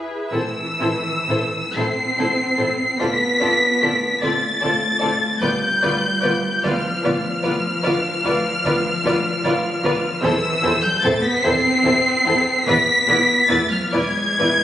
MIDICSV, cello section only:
0, 0, Header, 1, 2, 480
1, 0, Start_track
1, 0, Key_signature, 0, "minor"
1, 0, Tempo, 958466
1, 164, Time_signature, 12, 3, 24, 8
1, 649, Tempo, 892857
1, 1129, Tempo, 804290
1, 6889, Tempo, 827586
1, 7849, Tempo, 899550
1, 8458, End_track
2, 0, Start_track
2, 0, Title_t, "Cello section"
2, 0, Program_c, 0, 48
2, 159, Note_on_c, 0, 52, 60
2, 876, Note_off_c, 0, 52, 0
2, 895, Note_on_c, 0, 60, 67
2, 1607, Note_on_c, 0, 59, 63
2, 1608, Note_off_c, 0, 60, 0
2, 2337, Note_on_c, 0, 57, 58
2, 2338, Note_off_c, 0, 59, 0
2, 3039, Note_off_c, 0, 57, 0
2, 3051, Note_on_c, 0, 55, 68
2, 3767, Note_off_c, 0, 55, 0
2, 3783, Note_on_c, 0, 53, 78
2, 5897, Note_off_c, 0, 53, 0
2, 5923, Note_on_c, 0, 52, 86
2, 6280, Note_on_c, 0, 55, 79
2, 6282, Note_off_c, 0, 52, 0
2, 6396, Note_on_c, 0, 57, 86
2, 6401, Note_off_c, 0, 55, 0
2, 6518, Note_off_c, 0, 57, 0
2, 6522, Note_on_c, 0, 59, 96
2, 6642, Note_on_c, 0, 60, 107
2, 6643, Note_off_c, 0, 59, 0
2, 7361, Note_on_c, 0, 59, 90
2, 7366, Note_off_c, 0, 60, 0
2, 7843, Note_on_c, 0, 57, 90
2, 7845, Note_off_c, 0, 59, 0
2, 7961, Note_off_c, 0, 57, 0
2, 7962, Note_on_c, 0, 53, 84
2, 8075, Note_on_c, 0, 56, 91
2, 8081, Note_off_c, 0, 53, 0
2, 8458, Note_off_c, 0, 56, 0
2, 8458, End_track
0, 0, End_of_file